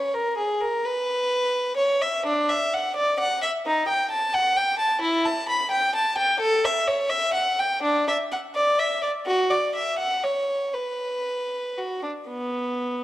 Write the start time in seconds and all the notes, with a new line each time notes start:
Already playing: C#5
0.14 A#4
0.37 G#4
0.60 A#4
0.85 B4
1.77 C#5
2.02 E5
2.26 D4
2.49 E5
2.73 F#5
2.96 D5
3.20 F#5
3.42 E5
3.66 D#4
3.88 G5
4.11 A5
4.34 F#5
4.57 G5
4.79 A5
5.01 E4
5.25 A5
5.49 B5
5.71 G5
5.95 A5
6.18 G5
6.40 A4
6.65 E5
6.87 C#5
7.10 E5
7.34 F#5
7.59 G5
7.83 D4
8.08 E5
8.32 F#5
8.55 D5
8.79 E5
9.03 D5
9.26 F#4
9.50 D5
9.75 E5
9.99 F#5
10.23 C#5
10.74 B4
11.78 F#4
12.03 D4
12.28 B3